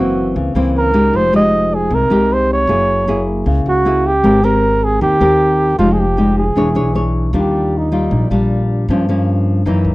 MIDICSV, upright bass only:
0, 0, Header, 1, 2, 480
1, 0, Start_track
1, 0, Key_signature, -3, "major"
1, 0, Tempo, 387597
1, 1404, Time_signature, 4, 2, 24, 8
1, 12320, End_track
2, 0, Start_track
2, 0, Title_t, "Upright bass"
2, 0, Program_c, 0, 32
2, 0, Note_on_c, 0, 30, 84
2, 390, Note_off_c, 0, 30, 0
2, 443, Note_on_c, 0, 37, 82
2, 667, Note_off_c, 0, 37, 0
2, 680, Note_on_c, 0, 37, 77
2, 1353, Note_off_c, 0, 37, 0
2, 1402, Note_on_c, 0, 29, 81
2, 2314, Note_off_c, 0, 29, 0
2, 2359, Note_on_c, 0, 36, 89
2, 2585, Note_off_c, 0, 36, 0
2, 2599, Note_on_c, 0, 36, 72
2, 3273, Note_off_c, 0, 36, 0
2, 3311, Note_on_c, 0, 30, 84
2, 4230, Note_off_c, 0, 30, 0
2, 4284, Note_on_c, 0, 37, 85
2, 4508, Note_off_c, 0, 37, 0
2, 4530, Note_on_c, 0, 37, 78
2, 5199, Note_off_c, 0, 37, 0
2, 5248, Note_on_c, 0, 32, 89
2, 6158, Note_off_c, 0, 32, 0
2, 6206, Note_on_c, 0, 39, 87
2, 6430, Note_off_c, 0, 39, 0
2, 6450, Note_on_c, 0, 39, 75
2, 7118, Note_off_c, 0, 39, 0
2, 7166, Note_on_c, 0, 29, 87
2, 8076, Note_off_c, 0, 29, 0
2, 8119, Note_on_c, 0, 28, 86
2, 8345, Note_off_c, 0, 28, 0
2, 8357, Note_on_c, 0, 35, 73
2, 9032, Note_off_c, 0, 35, 0
2, 9078, Note_on_c, 0, 39, 91
2, 9992, Note_off_c, 0, 39, 0
2, 10043, Note_on_c, 0, 34, 82
2, 10267, Note_off_c, 0, 34, 0
2, 10285, Note_on_c, 0, 34, 70
2, 10955, Note_off_c, 0, 34, 0
2, 11004, Note_on_c, 0, 43, 93
2, 11914, Note_off_c, 0, 43, 0
2, 11957, Note_on_c, 0, 42, 83
2, 12183, Note_off_c, 0, 42, 0
2, 12194, Note_on_c, 0, 37, 74
2, 12320, Note_off_c, 0, 37, 0
2, 12320, End_track
0, 0, End_of_file